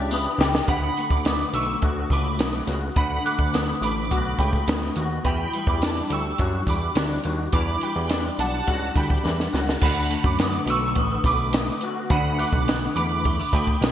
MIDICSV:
0, 0, Header, 1, 6, 480
1, 0, Start_track
1, 0, Tempo, 571973
1, 564, Time_signature, 4, 2, 24, 8
1, 11679, End_track
2, 0, Start_track
2, 0, Title_t, "Synth bell"
2, 0, Program_c, 0, 98
2, 575, Note_on_c, 0, 83, 91
2, 579, Note_on_c, 0, 78, 62
2, 798, Note_off_c, 0, 83, 0
2, 799, Note_off_c, 0, 78, 0
2, 933, Note_on_c, 0, 86, 57
2, 940, Note_on_c, 0, 83, 46
2, 1156, Note_off_c, 0, 86, 0
2, 1160, Note_off_c, 0, 83, 0
2, 1296, Note_on_c, 0, 88, 76
2, 1307, Note_on_c, 0, 85, 61
2, 1404, Note_off_c, 0, 88, 0
2, 1410, Note_off_c, 0, 85, 0
2, 1786, Note_on_c, 0, 83, 57
2, 1786, Note_on_c, 0, 86, 71
2, 1889, Note_off_c, 0, 83, 0
2, 1889, Note_off_c, 0, 86, 0
2, 2490, Note_on_c, 0, 83, 94
2, 2496, Note_on_c, 0, 78, 72
2, 2715, Note_off_c, 0, 83, 0
2, 2718, Note_off_c, 0, 78, 0
2, 2733, Note_on_c, 0, 90, 57
2, 2736, Note_on_c, 0, 86, 48
2, 2956, Note_off_c, 0, 90, 0
2, 2958, Note_off_c, 0, 86, 0
2, 3210, Note_on_c, 0, 86, 79
2, 3223, Note_on_c, 0, 83, 68
2, 3545, Note_off_c, 0, 86, 0
2, 3552, Note_off_c, 0, 83, 0
2, 3682, Note_on_c, 0, 79, 52
2, 3682, Note_on_c, 0, 83, 64
2, 3796, Note_off_c, 0, 83, 0
2, 3797, Note_off_c, 0, 79, 0
2, 4405, Note_on_c, 0, 83, 87
2, 4410, Note_on_c, 0, 79, 68
2, 4632, Note_off_c, 0, 83, 0
2, 4635, Note_off_c, 0, 79, 0
2, 4773, Note_on_c, 0, 86, 58
2, 4781, Note_on_c, 0, 83, 44
2, 4997, Note_off_c, 0, 86, 0
2, 5001, Note_off_c, 0, 83, 0
2, 5141, Note_on_c, 0, 88, 80
2, 5153, Note_on_c, 0, 85, 61
2, 5247, Note_off_c, 0, 88, 0
2, 5253, Note_off_c, 0, 85, 0
2, 5614, Note_on_c, 0, 86, 71
2, 5620, Note_on_c, 0, 83, 51
2, 5723, Note_off_c, 0, 86, 0
2, 5727, Note_off_c, 0, 83, 0
2, 6319, Note_on_c, 0, 86, 90
2, 6336, Note_on_c, 0, 83, 70
2, 6550, Note_off_c, 0, 86, 0
2, 6558, Note_off_c, 0, 83, 0
2, 6570, Note_on_c, 0, 83, 60
2, 6572, Note_on_c, 0, 79, 44
2, 6795, Note_off_c, 0, 83, 0
2, 6797, Note_off_c, 0, 79, 0
2, 7049, Note_on_c, 0, 81, 78
2, 7052, Note_on_c, 0, 78, 68
2, 7385, Note_off_c, 0, 81, 0
2, 7387, Note_off_c, 0, 78, 0
2, 7528, Note_on_c, 0, 83, 70
2, 7535, Note_on_c, 0, 79, 50
2, 7640, Note_off_c, 0, 83, 0
2, 7644, Note_off_c, 0, 79, 0
2, 8250, Note_on_c, 0, 83, 83
2, 8269, Note_on_c, 0, 78, 68
2, 8475, Note_off_c, 0, 83, 0
2, 8485, Note_off_c, 0, 78, 0
2, 8610, Note_on_c, 0, 86, 60
2, 8618, Note_on_c, 0, 83, 50
2, 8835, Note_off_c, 0, 86, 0
2, 8839, Note_off_c, 0, 83, 0
2, 8980, Note_on_c, 0, 88, 86
2, 8986, Note_on_c, 0, 85, 60
2, 9086, Note_off_c, 0, 88, 0
2, 9090, Note_off_c, 0, 85, 0
2, 9448, Note_on_c, 0, 83, 54
2, 9448, Note_on_c, 0, 86, 77
2, 9560, Note_off_c, 0, 83, 0
2, 9560, Note_off_c, 0, 86, 0
2, 10160, Note_on_c, 0, 83, 89
2, 10164, Note_on_c, 0, 78, 73
2, 10389, Note_off_c, 0, 83, 0
2, 10391, Note_off_c, 0, 78, 0
2, 10394, Note_on_c, 0, 90, 66
2, 10409, Note_on_c, 0, 86, 53
2, 10625, Note_off_c, 0, 90, 0
2, 10633, Note_off_c, 0, 86, 0
2, 10874, Note_on_c, 0, 86, 88
2, 10880, Note_on_c, 0, 83, 68
2, 11215, Note_off_c, 0, 86, 0
2, 11219, Note_off_c, 0, 83, 0
2, 11355, Note_on_c, 0, 83, 78
2, 11368, Note_on_c, 0, 79, 56
2, 11472, Note_off_c, 0, 83, 0
2, 11478, Note_off_c, 0, 79, 0
2, 11679, End_track
3, 0, Start_track
3, 0, Title_t, "Analog synth pad"
3, 0, Program_c, 1, 89
3, 0, Note_on_c, 1, 67, 80
3, 0, Note_on_c, 1, 76, 80
3, 0, Note_on_c, 1, 86, 89
3, 542, Note_off_c, 1, 76, 0
3, 544, Note_off_c, 1, 67, 0
3, 545, Note_off_c, 1, 86, 0
3, 11679, End_track
4, 0, Start_track
4, 0, Title_t, "Clean electric guitar"
4, 0, Program_c, 2, 27
4, 0, Note_on_c, 2, 52, 87
4, 0, Note_on_c, 2, 62, 67
4, 0, Note_on_c, 2, 67, 76
4, 92, Note_on_c, 2, 59, 61
4, 327, Note_off_c, 2, 67, 0
4, 337, Note_on_c, 2, 67, 72
4, 567, Note_off_c, 2, 52, 0
4, 576, Note_on_c, 2, 50, 67
4, 618, Note_off_c, 2, 67, 0
4, 819, Note_on_c, 2, 57, 53
4, 844, Note_off_c, 2, 59, 0
4, 1050, Note_on_c, 2, 59, 52
4, 1280, Note_off_c, 2, 57, 0
4, 1290, Note_on_c, 2, 57, 56
4, 1524, Note_off_c, 2, 62, 0
4, 1527, Note_on_c, 2, 66, 57
4, 1766, Note_off_c, 2, 57, 0
4, 1776, Note_on_c, 2, 57, 52
4, 2007, Note_off_c, 2, 59, 0
4, 2010, Note_on_c, 2, 59, 44
4, 2248, Note_off_c, 2, 66, 0
4, 2252, Note_on_c, 2, 66, 53
4, 2479, Note_off_c, 2, 50, 0
4, 2482, Note_on_c, 2, 50, 72
4, 2721, Note_off_c, 2, 57, 0
4, 2731, Note_on_c, 2, 57, 52
4, 2963, Note_off_c, 2, 59, 0
4, 2966, Note_on_c, 2, 59, 59
4, 3205, Note_off_c, 2, 57, 0
4, 3215, Note_on_c, 2, 57, 54
4, 3446, Note_off_c, 2, 66, 0
4, 3449, Note_on_c, 2, 66, 61
4, 3678, Note_off_c, 2, 57, 0
4, 3688, Note_on_c, 2, 57, 56
4, 3934, Note_off_c, 2, 59, 0
4, 3937, Note_on_c, 2, 59, 44
4, 4167, Note_off_c, 2, 66, 0
4, 4171, Note_on_c, 2, 66, 58
4, 4403, Note_off_c, 2, 50, 0
4, 4406, Note_on_c, 2, 52, 72
4, 4454, Note_off_c, 2, 57, 0
4, 4649, Note_on_c, 2, 55, 57
4, 4674, Note_off_c, 2, 66, 0
4, 4882, Note_off_c, 2, 59, 0
4, 4886, Note_on_c, 2, 62, 64
4, 5116, Note_off_c, 2, 55, 0
4, 5127, Note_on_c, 2, 55, 56
4, 5368, Note_on_c, 2, 66, 57
4, 5605, Note_off_c, 2, 55, 0
4, 5620, Note_on_c, 2, 55, 50
4, 5846, Note_off_c, 2, 62, 0
4, 5849, Note_on_c, 2, 62, 49
4, 6081, Note_off_c, 2, 66, 0
4, 6084, Note_on_c, 2, 66, 51
4, 6314, Note_off_c, 2, 52, 0
4, 6325, Note_on_c, 2, 52, 73
4, 6555, Note_off_c, 2, 55, 0
4, 6565, Note_on_c, 2, 55, 53
4, 6808, Note_off_c, 2, 62, 0
4, 6811, Note_on_c, 2, 62, 65
4, 7030, Note_off_c, 2, 55, 0
4, 7040, Note_on_c, 2, 55, 53
4, 7275, Note_off_c, 2, 66, 0
4, 7278, Note_on_c, 2, 66, 60
4, 7504, Note_off_c, 2, 55, 0
4, 7514, Note_on_c, 2, 55, 53
4, 7751, Note_off_c, 2, 62, 0
4, 7755, Note_on_c, 2, 62, 43
4, 7991, Note_off_c, 2, 66, 0
4, 7994, Note_on_c, 2, 66, 59
4, 8240, Note_off_c, 2, 52, 0
4, 8243, Note_on_c, 2, 50, 83
4, 8287, Note_off_c, 2, 55, 0
4, 8476, Note_on_c, 2, 57, 58
4, 8717, Note_off_c, 2, 62, 0
4, 8721, Note_on_c, 2, 59, 61
4, 8949, Note_off_c, 2, 57, 0
4, 8959, Note_on_c, 2, 57, 57
4, 9205, Note_off_c, 2, 59, 0
4, 9208, Note_on_c, 2, 59, 59
4, 9438, Note_off_c, 2, 57, 0
4, 9448, Note_on_c, 2, 57, 55
4, 9687, Note_off_c, 2, 59, 0
4, 9691, Note_on_c, 2, 59, 49
4, 9926, Note_off_c, 2, 66, 0
4, 9930, Note_on_c, 2, 66, 60
4, 10163, Note_off_c, 2, 50, 0
4, 10166, Note_on_c, 2, 50, 81
4, 10391, Note_off_c, 2, 57, 0
4, 10402, Note_on_c, 2, 57, 53
4, 10634, Note_off_c, 2, 59, 0
4, 10637, Note_on_c, 2, 59, 58
4, 10874, Note_off_c, 2, 57, 0
4, 10884, Note_on_c, 2, 57, 60
4, 11111, Note_off_c, 2, 57, 0
4, 11118, Note_off_c, 2, 59, 0
4, 11121, Note_on_c, 2, 57, 52
4, 11240, Note_off_c, 2, 57, 0
4, 11240, Note_on_c, 2, 59, 47
4, 11359, Note_on_c, 2, 57, 55
4, 11590, Note_off_c, 2, 59, 0
4, 11600, Note_on_c, 2, 59, 59
4, 11679, Note_off_c, 2, 50, 0
4, 11679, Note_off_c, 2, 57, 0
4, 11679, Note_off_c, 2, 59, 0
4, 11679, Note_off_c, 2, 66, 0
4, 11679, End_track
5, 0, Start_track
5, 0, Title_t, "Analog synth bass"
5, 0, Program_c, 3, 38
5, 0, Note_on_c, 3, 37, 98
5, 229, Note_off_c, 3, 37, 0
5, 322, Note_on_c, 3, 37, 98
5, 514, Note_off_c, 3, 37, 0
5, 570, Note_on_c, 3, 38, 112
5, 759, Note_off_c, 3, 38, 0
5, 929, Note_on_c, 3, 38, 97
5, 1215, Note_off_c, 3, 38, 0
5, 1283, Note_on_c, 3, 35, 66
5, 1475, Note_off_c, 3, 35, 0
5, 1534, Note_on_c, 3, 38, 96
5, 1721, Note_off_c, 3, 38, 0
5, 1763, Note_on_c, 3, 37, 76
5, 2005, Note_on_c, 3, 35, 95
5, 2018, Note_off_c, 3, 37, 0
5, 2196, Note_off_c, 3, 35, 0
5, 2243, Note_on_c, 3, 37, 89
5, 2435, Note_off_c, 3, 37, 0
5, 2488, Note_on_c, 3, 38, 107
5, 2678, Note_off_c, 3, 38, 0
5, 2847, Note_on_c, 3, 38, 89
5, 3133, Note_off_c, 3, 38, 0
5, 3198, Note_on_c, 3, 33, 76
5, 3452, Note_on_c, 3, 35, 95
5, 3465, Note_off_c, 3, 33, 0
5, 3641, Note_off_c, 3, 35, 0
5, 3685, Note_on_c, 3, 37, 81
5, 3876, Note_off_c, 3, 37, 0
5, 3924, Note_on_c, 3, 38, 88
5, 4116, Note_off_c, 3, 38, 0
5, 4165, Note_on_c, 3, 39, 86
5, 4357, Note_off_c, 3, 39, 0
5, 4402, Note_on_c, 3, 40, 108
5, 4594, Note_off_c, 3, 40, 0
5, 4759, Note_on_c, 3, 40, 106
5, 5049, Note_off_c, 3, 40, 0
5, 5118, Note_on_c, 3, 38, 77
5, 5312, Note_off_c, 3, 38, 0
5, 5366, Note_on_c, 3, 42, 104
5, 5557, Note_off_c, 3, 42, 0
5, 5594, Note_on_c, 3, 40, 85
5, 5790, Note_off_c, 3, 40, 0
5, 5838, Note_on_c, 3, 38, 84
5, 6032, Note_off_c, 3, 38, 0
5, 6085, Note_on_c, 3, 39, 95
5, 6277, Note_off_c, 3, 39, 0
5, 6322, Note_on_c, 3, 40, 110
5, 6515, Note_off_c, 3, 40, 0
5, 6677, Note_on_c, 3, 40, 97
5, 6968, Note_off_c, 3, 40, 0
5, 7037, Note_on_c, 3, 35, 73
5, 7232, Note_off_c, 3, 35, 0
5, 7280, Note_on_c, 3, 37, 90
5, 7474, Note_off_c, 3, 37, 0
5, 7516, Note_on_c, 3, 38, 85
5, 7712, Note_off_c, 3, 38, 0
5, 7763, Note_on_c, 3, 40, 91
5, 7955, Note_off_c, 3, 40, 0
5, 8004, Note_on_c, 3, 37, 101
5, 8196, Note_off_c, 3, 37, 0
5, 8242, Note_on_c, 3, 38, 102
5, 8531, Note_off_c, 3, 38, 0
5, 8594, Note_on_c, 3, 42, 80
5, 8886, Note_off_c, 3, 42, 0
5, 8946, Note_on_c, 3, 35, 70
5, 9199, Note_on_c, 3, 33, 96
5, 9211, Note_off_c, 3, 35, 0
5, 9392, Note_off_c, 3, 33, 0
5, 9432, Note_on_c, 3, 35, 79
5, 9820, Note_off_c, 3, 35, 0
5, 10155, Note_on_c, 3, 38, 115
5, 10446, Note_off_c, 3, 38, 0
5, 10514, Note_on_c, 3, 35, 94
5, 10805, Note_off_c, 3, 35, 0
5, 10873, Note_on_c, 3, 40, 74
5, 11260, Note_off_c, 3, 40, 0
5, 11353, Note_on_c, 3, 38, 93
5, 11548, Note_off_c, 3, 38, 0
5, 11591, Note_on_c, 3, 35, 98
5, 11679, Note_off_c, 3, 35, 0
5, 11679, End_track
6, 0, Start_track
6, 0, Title_t, "Drums"
6, 93, Note_on_c, 9, 54, 73
6, 177, Note_off_c, 9, 54, 0
6, 342, Note_on_c, 9, 38, 110
6, 426, Note_off_c, 9, 38, 0
6, 460, Note_on_c, 9, 38, 96
6, 544, Note_off_c, 9, 38, 0
6, 569, Note_on_c, 9, 42, 65
6, 572, Note_on_c, 9, 36, 94
6, 653, Note_off_c, 9, 42, 0
6, 656, Note_off_c, 9, 36, 0
6, 816, Note_on_c, 9, 42, 50
6, 900, Note_off_c, 9, 42, 0
6, 927, Note_on_c, 9, 36, 87
6, 1011, Note_off_c, 9, 36, 0
6, 1049, Note_on_c, 9, 42, 73
6, 1058, Note_on_c, 9, 38, 92
6, 1133, Note_off_c, 9, 42, 0
6, 1142, Note_off_c, 9, 38, 0
6, 1289, Note_on_c, 9, 42, 75
6, 1373, Note_off_c, 9, 42, 0
6, 1528, Note_on_c, 9, 42, 68
6, 1532, Note_on_c, 9, 36, 78
6, 1612, Note_off_c, 9, 42, 0
6, 1616, Note_off_c, 9, 36, 0
6, 1764, Note_on_c, 9, 36, 75
6, 1778, Note_on_c, 9, 42, 57
6, 1848, Note_off_c, 9, 36, 0
6, 1862, Note_off_c, 9, 42, 0
6, 2006, Note_on_c, 9, 42, 74
6, 2018, Note_on_c, 9, 38, 107
6, 2090, Note_off_c, 9, 42, 0
6, 2102, Note_off_c, 9, 38, 0
6, 2245, Note_on_c, 9, 42, 66
6, 2260, Note_on_c, 9, 38, 37
6, 2329, Note_off_c, 9, 42, 0
6, 2344, Note_off_c, 9, 38, 0
6, 2485, Note_on_c, 9, 42, 70
6, 2487, Note_on_c, 9, 36, 106
6, 2569, Note_off_c, 9, 42, 0
6, 2571, Note_off_c, 9, 36, 0
6, 2735, Note_on_c, 9, 42, 57
6, 2819, Note_off_c, 9, 42, 0
6, 2843, Note_on_c, 9, 36, 84
6, 2927, Note_off_c, 9, 36, 0
6, 2970, Note_on_c, 9, 42, 83
6, 2979, Note_on_c, 9, 38, 78
6, 3054, Note_off_c, 9, 42, 0
6, 3063, Note_off_c, 9, 38, 0
6, 3216, Note_on_c, 9, 42, 67
6, 3300, Note_off_c, 9, 42, 0
6, 3452, Note_on_c, 9, 36, 77
6, 3454, Note_on_c, 9, 42, 73
6, 3536, Note_off_c, 9, 36, 0
6, 3538, Note_off_c, 9, 42, 0
6, 3681, Note_on_c, 9, 36, 71
6, 3693, Note_on_c, 9, 42, 60
6, 3765, Note_off_c, 9, 36, 0
6, 3777, Note_off_c, 9, 42, 0
6, 3801, Note_on_c, 9, 36, 71
6, 3885, Note_off_c, 9, 36, 0
6, 3925, Note_on_c, 9, 42, 84
6, 3938, Note_on_c, 9, 38, 108
6, 4009, Note_off_c, 9, 42, 0
6, 4022, Note_off_c, 9, 38, 0
6, 4160, Note_on_c, 9, 42, 64
6, 4244, Note_off_c, 9, 42, 0
6, 4403, Note_on_c, 9, 42, 68
6, 4405, Note_on_c, 9, 36, 90
6, 4487, Note_off_c, 9, 42, 0
6, 4488, Note_off_c, 9, 36, 0
6, 4645, Note_on_c, 9, 42, 47
6, 4728, Note_off_c, 9, 42, 0
6, 4759, Note_on_c, 9, 36, 85
6, 4843, Note_off_c, 9, 36, 0
6, 4883, Note_on_c, 9, 42, 73
6, 4892, Note_on_c, 9, 38, 89
6, 4967, Note_off_c, 9, 42, 0
6, 4976, Note_off_c, 9, 38, 0
6, 5123, Note_on_c, 9, 42, 77
6, 5207, Note_off_c, 9, 42, 0
6, 5356, Note_on_c, 9, 42, 64
6, 5365, Note_on_c, 9, 36, 68
6, 5440, Note_off_c, 9, 42, 0
6, 5449, Note_off_c, 9, 36, 0
6, 5596, Note_on_c, 9, 36, 76
6, 5605, Note_on_c, 9, 42, 66
6, 5680, Note_off_c, 9, 36, 0
6, 5689, Note_off_c, 9, 42, 0
6, 5836, Note_on_c, 9, 42, 82
6, 5848, Note_on_c, 9, 38, 105
6, 5920, Note_off_c, 9, 42, 0
6, 5932, Note_off_c, 9, 38, 0
6, 6072, Note_on_c, 9, 42, 58
6, 6156, Note_off_c, 9, 42, 0
6, 6315, Note_on_c, 9, 42, 68
6, 6320, Note_on_c, 9, 36, 103
6, 6399, Note_off_c, 9, 42, 0
6, 6403, Note_off_c, 9, 36, 0
6, 6557, Note_on_c, 9, 42, 51
6, 6641, Note_off_c, 9, 42, 0
6, 6793, Note_on_c, 9, 42, 76
6, 6802, Note_on_c, 9, 38, 85
6, 6877, Note_off_c, 9, 42, 0
6, 6886, Note_off_c, 9, 38, 0
6, 7041, Note_on_c, 9, 42, 79
6, 7125, Note_off_c, 9, 42, 0
6, 7278, Note_on_c, 9, 42, 68
6, 7283, Note_on_c, 9, 36, 78
6, 7362, Note_off_c, 9, 42, 0
6, 7367, Note_off_c, 9, 36, 0
6, 7516, Note_on_c, 9, 36, 73
6, 7525, Note_on_c, 9, 42, 62
6, 7600, Note_off_c, 9, 36, 0
6, 7609, Note_off_c, 9, 42, 0
6, 7638, Note_on_c, 9, 36, 87
6, 7722, Note_off_c, 9, 36, 0
6, 7769, Note_on_c, 9, 38, 54
6, 7852, Note_off_c, 9, 38, 0
6, 7889, Note_on_c, 9, 38, 52
6, 7973, Note_off_c, 9, 38, 0
6, 8011, Note_on_c, 9, 38, 75
6, 8095, Note_off_c, 9, 38, 0
6, 8133, Note_on_c, 9, 38, 79
6, 8217, Note_off_c, 9, 38, 0
6, 8236, Note_on_c, 9, 49, 78
6, 8241, Note_on_c, 9, 36, 99
6, 8320, Note_off_c, 9, 49, 0
6, 8325, Note_off_c, 9, 36, 0
6, 8483, Note_on_c, 9, 42, 54
6, 8567, Note_off_c, 9, 42, 0
6, 8595, Note_on_c, 9, 36, 89
6, 8679, Note_off_c, 9, 36, 0
6, 8717, Note_on_c, 9, 42, 78
6, 8726, Note_on_c, 9, 38, 88
6, 8801, Note_off_c, 9, 42, 0
6, 8810, Note_off_c, 9, 38, 0
6, 8957, Note_on_c, 9, 42, 80
6, 9041, Note_off_c, 9, 42, 0
6, 9193, Note_on_c, 9, 42, 76
6, 9200, Note_on_c, 9, 36, 74
6, 9277, Note_off_c, 9, 42, 0
6, 9284, Note_off_c, 9, 36, 0
6, 9432, Note_on_c, 9, 36, 78
6, 9439, Note_on_c, 9, 42, 62
6, 9516, Note_off_c, 9, 36, 0
6, 9522, Note_off_c, 9, 42, 0
6, 9675, Note_on_c, 9, 42, 95
6, 9687, Note_on_c, 9, 38, 108
6, 9759, Note_off_c, 9, 42, 0
6, 9771, Note_off_c, 9, 38, 0
6, 9909, Note_on_c, 9, 42, 63
6, 9993, Note_off_c, 9, 42, 0
6, 10154, Note_on_c, 9, 42, 74
6, 10157, Note_on_c, 9, 36, 99
6, 10238, Note_off_c, 9, 42, 0
6, 10241, Note_off_c, 9, 36, 0
6, 10400, Note_on_c, 9, 42, 56
6, 10484, Note_off_c, 9, 42, 0
6, 10512, Note_on_c, 9, 36, 97
6, 10596, Note_off_c, 9, 36, 0
6, 10641, Note_on_c, 9, 42, 94
6, 10650, Note_on_c, 9, 38, 88
6, 10725, Note_off_c, 9, 42, 0
6, 10734, Note_off_c, 9, 38, 0
6, 10879, Note_on_c, 9, 42, 77
6, 10963, Note_off_c, 9, 42, 0
6, 11122, Note_on_c, 9, 36, 86
6, 11123, Note_on_c, 9, 42, 70
6, 11206, Note_off_c, 9, 36, 0
6, 11207, Note_off_c, 9, 42, 0
6, 11353, Note_on_c, 9, 36, 85
6, 11367, Note_on_c, 9, 42, 72
6, 11437, Note_off_c, 9, 36, 0
6, 11451, Note_off_c, 9, 42, 0
6, 11474, Note_on_c, 9, 36, 76
6, 11558, Note_off_c, 9, 36, 0
6, 11600, Note_on_c, 9, 42, 84
6, 11612, Note_on_c, 9, 38, 110
6, 11679, Note_off_c, 9, 38, 0
6, 11679, Note_off_c, 9, 42, 0
6, 11679, End_track
0, 0, End_of_file